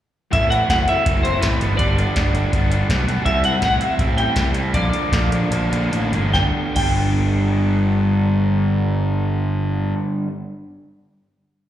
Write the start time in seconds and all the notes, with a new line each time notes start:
0.31 A1 A2 E3 A3 C4 E4 E5, kick, closed hi-hat
0.50 A3 C4 E4 F#5, closed hi-hat
0.69 F#1 A2 E3 A3 C4 E4 F#5, kick, snare, closed hi-hat
0.88 A3 C4 E4 E5, closed hi-hat
1.05 F#1 E3 A3 C4 E4, kick, closed hi-hat
1.23 A2 E3 A3 C4 E4 C5, closed hi-hat
1.41 A1 E3 A3 C4 E4 B4, kick, snare, closed hi-hat
1.61 G1 G2 D3 G3 B3 D4, closed hi-hat
1.77 G2 D3 G3 B3 D4 D5, kick, closed hi-hat
1.97 G3 B3 D4, closed hi-hat
2.15 G1 G2 D3 G3 B3 D4, kick, snare, closed hi-hat
2.34 G3 B3 D4, closed hi-hat
2.52 G1 D3 G3 B3 D4, kick, closed hi-hat
2.70 G2 D3 G3 B3 D4, closed hi-hat
2.89 B1 D3 G3 B3 D4, kick, snare, closed hi-hat
3.07 G3 B3 D4, snare, closed hi-hat
3.24 C2 C3 G3 C4 E4 E5, kick, closed hi-hat
3.44 G3 C4 E4 F#5, closed hi-hat
3.61 A1 C3 G3 C4 E4, kick, snare, closed hi-hat
3.65 F#5
3.80 G3 C4 E4 E5, closed hi-hat
3.99 A1 C3 G3 C4 E4, kick, closed hi-hat
4.17 C3 G3 C4 E4 G5, closed hi-hat
4.35 C2 C3 G3 C4 E4, kick, snare, closed hi-hat
4.54 G3 C4 E4, closed hi-hat
4.72 A#1 A#2 D3 F3 A#3 D4 D5, kick, closed hi-hat
4.92 F3 A#3 D4, closed hi-hat
5.12 A#1 A#2 D3 F3 A#3 D4, kick, snare, closed hi-hat
5.31 F3 A#3 D4, closed hi-hat
5.51 A#1 D3 F3 A#3 D4, closed hi-hat
5.71 A#1 A#2 D3 F3 A#3 D4, closed hi-hat
5.91 A1 D3 F3 A#3 D4, closed hi-hat
6.12 G1 F3 A#3 D4, closed hi-hat
6.34 G1 G2 D3 G3 B3 G5, kick, snare
6.38 D4
6.75 G1 G2 D3 G3 B3 G5, kick, crash
6.79 D4